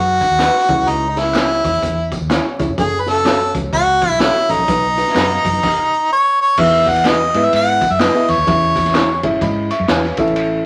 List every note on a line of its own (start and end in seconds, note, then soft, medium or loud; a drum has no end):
0.00 0.20 F#2 loud
0.00 0.91 F#4 loud
0.21 kick medium
0.21 closed hi-hat medium
0.21 tambourine medium
0.30 0.48 D#2 medium
0.39 0.54 B3 medium
0.39 0.55 D#4 loud
0.39 0.55 F#4 loud
0.39 0.55 B4 loud
0.39 snare medium
0.39 clap medium
0.39 closed hi-hat loud
0.39 tambourine medium
0.55 snare soft
0.68 0.76 C#2 medium
0.68 1.31 C#3 medium
0.68 1.05 C#4 loud
0.68 1.05 E4 medium
0.68 1.05 G#4 medium
0.68 1.05 C#5 loud
0.68 kick loud
0.68 open hi-hat medium
0.68 tambourine soft
0.78 0.85 C2 medium
0.87 1.61 C#2 loud
0.87 1.09 D#4 medium
0.87 closed hi-hat loud
0.87 tambourine soft
1.09 1.20 D#4 medium
1.16 1.71 C#4 medium
1.16 1.21 D#4 soft
1.16 2.13 E4 loud
1.16 1.72 G#4 medium
1.16 1.72 C#5 medium
1.16 snare soft
1.16 closed hi-hat medium
1.16 tambourine medium
1.22 1.74 E4 medium
1.35 1.50 C#4 medium
1.35 1.50 E4 medium
1.35 1.50 G#4 medium
1.35 1.51 C#5 medium
1.35 snare loud
1.35 clap medium
1.35 closed hi-hat medium
1.35 tambourine medium
1.64 1.78 E2 medium
1.64 kick medium
1.64 closed hi-hat medium
1.64 tambourine soft
1.74 closed hi-hat medium
1.82 2.10 E2 medium
1.82 kick medium
1.82 closed hi-hat loud
1.82 tambourine medium
2.12 kick medium
2.12 closed hi-hat medium
2.12 tambourine medium
2.21 2.38 D#2 medium
2.30 2.45 C#4 medium
2.30 2.45 E4 medium
2.30 2.46 G#4 medium
2.30 2.46 C#5 medium
2.30 snare loud
2.30 clap medium
2.30 closed hi-hat loud
2.30 tambourine medium
2.59 2.66 C#2 medium
2.59 2.70 C#4 medium
2.59 2.71 E4 medium
2.59 2.71 G#4 medium
2.59 2.71 C#5 medium
2.59 kick loud
2.59 closed hi-hat medium
2.59 tambourine medium
2.68 2.75 F1 loud
2.78 3.51 F#1 loud
2.78 2.95 C#4 medium
2.78 2.95 F#4 medium
2.78 3.02 G#4 loud
2.78 2.95 A4 medium
2.78 2.96 C#5 medium
2.78 kick loud
2.78 closed hi-hat medium
2.78 tambourine soft
3.00 3.11 B4 medium
3.06 3.62 C#4 medium
3.06 3.62 F#4 medium
3.06 3.62 A4 medium
3.06 3.56 A4 loud
3.06 3.62 C#5 medium
3.06 snare soft
3.06 closed hi-hat medium
3.06 tambourine soft
3.25 3.40 C#4 loud
3.25 3.40 F#4 medium
3.25 3.41 A4 medium
3.25 3.41 C#5 loud
3.25 snare loud
3.25 clap medium
3.25 closed hi-hat medium
3.25 tambourine medium
3.40 closed hi-hat medium
3.55 3.68 C#2 medium
3.55 kick loud
3.55 closed hi-hat medium
3.55 tambourine soft
3.73 4.01 C#2 medium
3.73 4.10 F#4 loud
3.73 kick medium
3.73 closed hi-hat medium
3.73 tambourine medium
4.02 kick loud
4.02 closed hi-hat medium
4.02 tambourine medium
4.10 4.28 B1 medium
4.10 4.21 E4 loud
4.20 4.35 C#4 medium
4.20 4.53 E4 loud
4.20 4.36 F#4 medium
4.20 4.36 A4 medium
4.20 4.36 C#5 loud
4.20 snare loud
4.20 clap medium
4.20 closed hi-hat medium
4.20 tambourine medium
4.49 4.56 A1 medium
4.49 4.61 C#4 medium
4.49 6.11 D#4 loud
4.49 4.61 F#4 medium
4.49 4.61 A4 medium
4.49 4.61 C#5 medium
4.49 closed hi-hat medium
4.49 tambourine medium
4.59 4.65 A#1 medium
4.68 5.03 B1 loud
4.68 5.41 B2 medium
4.68 4.86 D#4 medium
4.68 4.86 F#4 medium
4.68 4.86 B4 medium
4.68 4.86 D#5 medium
4.68 kick loud
4.68 closed hi-hat loud
4.68 tambourine soft
4.98 5.52 D#4 medium
4.98 5.52 F#4 medium
4.98 5.53 B4 medium
4.98 5.53 D#5 medium
4.98 closed hi-hat medium
4.98 tambourine medium
5.07 snare soft
5.15 5.37 F#2 medium
5.15 5.30 B3 medium
5.15 5.30 D#4 loud
5.15 5.31 F#4 loud
5.15 5.31 B4 loud
5.15 snare loud
5.15 clap medium
5.15 closed hi-hat medium
5.15 tambourine medium
5.30 closed hi-hat medium
5.45 5.58 F#2 medium
5.45 kick loud
5.45 closed hi-hat medium
5.45 tambourine soft
5.54 closed hi-hat medium
5.63 kick loud
5.63 crash medium
6.12 6.38 C#5 loud
6.42 6.61 C#5 loud
6.58 7.30 E2 loud
6.58 7.31 E3 medium
6.58 7.02 B3 medium
6.58 7.02 E4 medium
6.58 7.02 G#4 medium
6.58 7.02 B4 medium
6.58 7.02 E5 medium
6.58 6.90 E5 loud
6.58 kick loud
6.58 crash loud
6.58 tambourine soft
6.86 7.09 F#5 loud
6.86 kick medium
6.86 snare soft
6.86 ride medium
6.86 tambourine soft
6.96 ride medium
7.04 7.20 B3 medium
7.04 7.20 E4 medium
7.04 7.20 G#4 medium
7.04 7.21 B4 medium
7.04 7.47 D#5 loud
7.04 snare loud
7.04 clap loud
7.04 ride medium
7.04 tambourine medium
7.34 7.48 G#2 loud
7.34 7.84 B3 medium
7.34 7.84 E4 medium
7.34 7.84 G#4 medium
7.34 7.84 B4 medium
7.34 7.84 E5 medium
7.34 ride medium
7.34 tambourine soft
7.45 7.54 E5 loud
7.53 7.81 G#2 medium
7.53 7.93 F#5 loud
7.53 ride medium
7.53 tambourine medium
7.81 kick medium
7.81 ride medium
7.81 tambourine medium
7.90 8.08 F#2 medium
7.90 8.02 E5 medium
7.99 8.15 B3 medium
7.99 8.15 E4 medium
7.99 8.15 G#4 medium
7.99 8.15 B4 medium
7.99 8.32 D#5 loud
7.99 snare loud
7.99 clap medium
7.99 ride medium
7.99 tambourine medium
8.14 8.36 B3 medium
8.14 8.36 E4 medium
8.14 8.37 G#4 medium
8.14 8.37 B4 medium
8.14 8.37 E5 medium
8.14 snare soft
8.29 8.36 E2 loud
8.29 9.24 C#5 loud
8.29 ride medium
8.29 tambourine medium
8.38 8.45 D#2 medium
8.47 9.23 E2 loud
8.47 9.20 E3 medium
8.47 8.91 C#4 medium
8.47 8.91 E4 medium
8.47 8.91 G#4 medium
8.47 8.91 C#5 medium
8.47 8.91 E5 medium
8.47 kick loud
8.47 ride medium
8.47 tambourine soft
8.76 kick medium
8.76 ride medium
8.76 tambourine medium
8.86 snare soft
8.86 ride medium
8.94 9.09 C#4 medium
8.94 9.09 E4 medium
8.94 9.10 G#4 medium
8.94 9.10 C#5 medium
8.94 snare loud
8.94 clap loud
8.94 ride medium
8.94 tambourine medium
9.23 9.37 G#2 medium
9.23 9.73 C#4 medium
9.23 9.73 E4 medium
9.23 9.73 G#4 medium
9.23 9.42 C#5 medium
9.23 9.42 E5 loud
9.23 kick medium
9.23 ride medium
9.41 9.69 G#2 medium
9.41 9.70 D#5 medium
9.41 9.70 B5 medium
9.41 kick loud
9.41 ride medium
9.41 tambourine medium
9.70 9.89 E5 medium
9.70 9.88 C#6 medium
9.70 ride medium
9.70 tambourine medium
9.80 9.87 F#2 loud
9.88 10.10 E2 loud
9.88 10.04 C#4 loud
9.88 10.04 E4 loud
9.88 10.04 G#4 loud
9.88 10.35 B4 medium
9.88 10.04 C#5 medium
9.88 10.35 G#5 medium
9.88 snare medium
9.88 clap medium
9.88 ride medium
9.88 tambourine medium
10.04 snare soft
10.17 10.66 A1 loud
10.17 10.66 A2 medium
10.17 10.66 C#4 loud
10.17 10.66 E4 medium
10.17 10.66 A4 medium
10.17 10.66 C#5 medium
10.17 10.66 E5 loud
10.17 kick loud
10.17 ride medium
10.17 tambourine medium
10.27 ride soft
10.36 ride medium